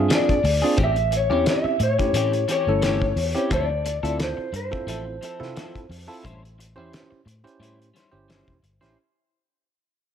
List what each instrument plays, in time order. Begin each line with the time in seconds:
Already playing: tine electric piano C4 D4 F4 G#4
0.09 clean electric guitar F3 A#3 D4 G#4, snare, closed hi-hat
0.15 clean electric guitar D5
0.29 muted fingered electric bass stroke, kick, closed hi-hat
0.43 fingered electric bass D2, muted clean electric guitar stroke, open hi-hat
0.62 clean electric guitar A#3 D4 G#4, tine electric piano C4 D4 F4 G#4
0.77 fingered electric bass A1, clean electric guitar E3 C4 C#4 G4, kick, closed hi-hat
0.84 clean electric guitar E5
0.96 muted clean electric guitar stroke, closed hi-hat
1.11 muted clean electric guitar stroke, closed hi-hat
1.17 clean electric guitar C#5
1.30 fingered electric bass E2, tine electric piano C4 C#4 E4 G4, clean electric guitar C4 C#4 G4
1.45 muted clean electric guitar stroke, snare, closed hi-hat
1.50 clean electric guitar E5
1.64 muted clean electric guitar stroke, muted fingered electric bass stroke
1.79 fingered electric bass A2, clean electric guitar C#5, muted clean electric guitar stroke, closed hi-hat
1.99 tine electric piano A3 C#4 E4 G4, muted clean electric guitar stroke, kick, closed hi-hat
2.13 fingered electric bass A2, clean electric guitar E3 C4 C#4 G4, closed hi-hat
2.33 muted clean electric guitar stroke, closed hi-hat
2.48 clean electric guitar E3 C4 C#4 G4, closed hi-hat
2.52 clean electric guitar C#5
2.67 fingered electric bass G1, tine electric piano A3 C#4 E4 A4
2.82 clean electric guitar E3 C4 C#4 G4, snare, closed hi-hat
3.02 kick
3.16 fingered electric bass E2, muted clean electric guitar stroke, open hi-hat
3.35 tine electric piano C4 C#4 E4 G4, clean electric guitar C4 C#4 G4, closed hi-hat
3.50 fingered electric bass D2, clean electric guitar F3 C4 E4 A4 D5, kick, closed hi-hat
3.70 muted clean electric guitar stroke
3.85 muted clean electric guitar stroke, closed hi-hat
4.03 fingered electric bass D2, tine electric piano C4 E4 F4 A4, clean electric guitar C4 E4 A4, closed hi-hat
4.18 muted clean electric guitar stroke, snare, closed hi-hat
4.23 clean electric guitar C5
4.37 muted clean electric guitar stroke, muted fingered electric bass stroke
4.53 fingered electric bass G2, clean electric guitar C5, muted clean electric guitar stroke, closed hi-hat
4.71 tine electric piano C4 E4 F4 A4, muted clean electric guitar stroke, kick
4.87 fingered electric bass A1, clean electric guitar F3 C4 E4 A4, closed hi-hat
5.06 muted clean electric guitar stroke
5.21 clean electric guitar F3 C4 E4 A4, closed hi-hat
5.40 fingered electric bass C3, tine electric piano C4 E4 F4 A4, snare
5.56 clean electric guitar F3 C4 E4 A4, snare, closed hi-hat
5.75 muted fingered electric bass stroke, kick, closed hi-hat
5.89 fingered electric bass F2, muted clean electric guitar stroke, open hi-hat
6.07 tine electric piano C4 E4 F4 A4, clean electric guitar C4 E4 A4
6.24 fingered electric bass A1, clean electric guitar G3 C#4 E4 C5, kick, closed hi-hat
6.44 muted clean electric guitar stroke, closed hi-hat
6.58 muted clean electric guitar stroke, closed hi-hat
6.76 fingered electric bass E2, tine electric piano C#4 E4 G4 C5, clean electric guitar C#4 E4 C5
6.93 muted clean electric guitar stroke, snare, closed hi-hat
7.11 muted clean electric guitar stroke, muted fingered electric bass stroke
7.25 fingered electric bass A2, muted clean electric guitar stroke, closed hi-hat
7.44 tine electric piano C#4 E4 G4 C5, muted clean electric guitar stroke, muted fingered electric bass stroke, closed hi-hat
7.60 fingered electric bass A2, clean electric guitar G3 C#4 E4 C5, closed hi-hat
7.80 muted clean electric guitar stroke, closed hi-hat
7.94 clean electric guitar G3 C#4 E4 C5, snare, closed hi-hat
8.12 fingered electric bass G1, tine electric piano C#4 E4 G4 C5
8.28 clean electric guitar G3 C#4 E4 C5, snare, closed hi-hat
8.48 fingered electric bass E1, kick
8.63 fingered electric bass G1, muted clean electric guitar stroke, closed hi-hat
8.81 fingered electric bass A1, tine electric piano C#4 E4 G4 C5, clean electric guitar C#4 E4 C5, snare, closed hi-hat